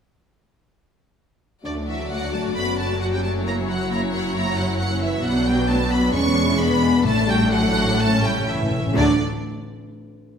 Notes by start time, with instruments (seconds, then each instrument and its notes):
1.64 double bass section D2, cello section D2, french horn section D3, viola section F#3 F#4, violin section A3 D5
1.77 violin section D4
1.88 french horn section E3, violin section F#4 E5
2.00 violin section A4
2.11 french horn section F#3, violin section F#4 F#5
2.22 violin section D4
2.33 violin section A3 A5, french horn section A3
2.44 violin section D4
2.55 double bass section F#1, cello section F#2, violin section A3 B5, french horn section B3
2.67 violin section C#4
2.79 french horn section A3, violin section F#4 A5
2.89 violin section A4
3.00 french horn section F#3, violin section F#4 F#5
3.11 french horn section G3, violin section C#4 G5
3.23 violin section A3 A5, french horn section A3
3.34 violin section C#4
3.45 violin section A#3 C#5 A#5, french horn section A#3, viola section E4
3.57 violin section C#4
3.68 french horn section F#3, violin section E4 F#5
3.80 violin section F#4
3.90 french horn section A#3, violin section E4 A#5
4.02 violin section C#4
4.12 french horn section F#3, violin section A#3 F#5
4.24 violin section C#4
4.34 french horn section A#3, violin section E4 A#5
4.46 violin section F#4
4.57 french horn section F#3, violin section E4 F#5
4.68 violin section C#4
4.79 french horn section F#3, violin section A#3 F#5
4.90 violin section C#4
5.02 french horn section E3, violin section E4 E5
5.14 violin section F#4
5.23 double bass section B1, cello section B2, french horn section F#3, viola section F#3 D4, violin section B3 B4 F#5
5.35 violin section D4
5.47 french horn section G3, violin section F#4 G5
5.58 violin section D4
5.68 french horn section A3, violin section B3 A5
5.79 violin section D4
5.90 french horn section B3, violin section F#4 B5
6.00 violin section D4
6.12 double bass section E1, cello section E2, violin section G#3 C#6, viola section G#3, french horn section C#4
6.24 violin section B3
6.35 violin section D4
6.46 violin section E4
6.58 french horn section B3, violin section D4 B5
6.70 violin section B3
6.82 violin section G#3
6.94 violin section B3
7.05 double bass section A1, timpani A2, cello section A2, french horn section A3, viola section A3, violin section A3 A4 A5
7.17 violin section D4
7.27 french horn section G3, violin section F#4 G5
7.40 violin section D4
7.50 french horn section F#3, violin section A3 F#5
7.63 violin section D4
7.75 violin section F#4
7.87 violin section D4
7.98 french horn section A3, violin section A3 A5, viola section C#4
8.06 timpani A2
8.10 timpani A2, violin section C#4
8.22 french horn section G3, violin section E4 G5
8.29 timpani A2
8.35 timpani A2, violin section G4
8.46 timpani A2, french horn section E3, violin section E4 E5
8.54 timpani A2
8.59 timpani A2, violin section C#4
8.71 timpani A2, violin section A3
8.78 timpani A2
8.84 timpani A2, violin section C#4
8.95 double bass section D2, cello section D3, timpani D3, viola section F#3 A3, french horn section D4, violin section D4 D5